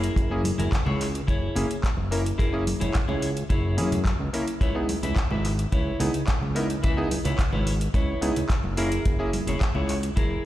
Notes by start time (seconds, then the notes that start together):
Already playing: F#1 E4 G#4 A#4
0.04 closed hi-hat
0.16 F#1, kick, closed hi-hat
0.31 A#3 C#4 E4 G#4
0.44 muted clean electric guitar stroke, open hi-hat, high conga
0.58 F#1 E4 G#4 A#4, closed hi-hat, low conga
0.72 kick, clap, closed hi-hat
0.86 C#2 E4 G#4 C#5, low conga
1.00 clap, open hi-hat
1.15 closed hi-hat
1.27 F#1 E4 G#4 C#5, kick, closed hi-hat
1.55 F#1 A#3 C#4 E4 G#4, open hi-hat, low conga
1.71 closed hi-hat
1.84 kick, clap, closed hi-hat
1.97 F#1, high conga
2.11 A#3 C#4 E4 A#4, open hi-hat
2.25 muted clean electric guitar stroke, closed hi-hat
2.38 F#1 E4 G#4 A#4, kick, closed hi-hat
2.53 A#3 C#4 E4 G#4
2.66 muted clean electric guitar stroke, open hi-hat, high conga
2.80 F#1 E4 G#4 C#5, closed hi-hat, low conga
2.94 kick, clap, closed hi-hat
3.08 C#2 E4 G#4 C#5, low conga
3.22 open hi-hat
3.37 closed hi-hat
3.49 F#1 E4 G#4 C#5, kick, closed hi-hat
3.77 F#2 A#3 C#4 E4 G#4, open hi-hat
3.92 closed hi-hat, low conga
4.05 kick, clap, closed hi-hat
4.20 C#2, high conga
4.33 A#3 C#4 E4 A#4, open hi-hat
4.47 muted clean electric guitar stroke, closed hi-hat
4.61 C#2 E4 B4 C#5, kick, closed hi-hat
4.75 B3 D#4 E4 G#4
4.89 muted clean electric guitar stroke, open hi-hat, high conga
5.03 C#2 E4 B4 E5, closed hi-hat, low conga
5.16 kick, clap, closed hi-hat
5.31 G#1 E4 B4 E5, low conga
5.44 clap, open hi-hat
5.59 closed hi-hat
5.72 C#2 E4 B4 C#5, kick, closed hi-hat
6.00 C#2 B3 D#4 E4 G#4, open hi-hat, low conga
6.14 closed hi-hat
6.27 kick, clap, closed hi-hat
6.42 C#2, high conga
6.55 B3 D#4 E4 A#4, open hi-hat
6.69 muted clean electric guitar stroke, closed hi-hat
6.83 C#2 E4 B4 E5, kick, closed hi-hat
6.97 B3 D#4 E4 G#4
7.11 muted clean electric guitar stroke, open hi-hat, high conga
7.25 C#2 E4 B4 C#5, closed hi-hat, low conga
7.39 kick, clap, closed hi-hat
7.52 G#1 E4 B4 C#5, low conga
7.67 open hi-hat
7.81 closed hi-hat
7.94 C#2 E4 B4 C#5, kick, closed hi-hat
8.21 C#2 B3 D#4 E4 G#4, open hi-hat
8.36 closed hi-hat, low conga
8.49 kick, clap, closed hi-hat
8.64 F#1, high conga
8.77 A#3 C#4 E4 G#4 A#4, open hi-hat
8.92 closed hi-hat
9.05 F#1, kick, closed hi-hat
9.19 A#3 C#4 E4 G#4
9.33 muted clean electric guitar stroke, open hi-hat, high conga
9.47 F#1 E4 G#4 C#5, closed hi-hat, low conga
9.61 kick, clap, closed hi-hat
9.75 C#2 E4 G#4 C#5, low conga
9.89 clap, open hi-hat
10.03 closed hi-hat
10.16 F#1 E4 G#4 A#4, kick, closed hi-hat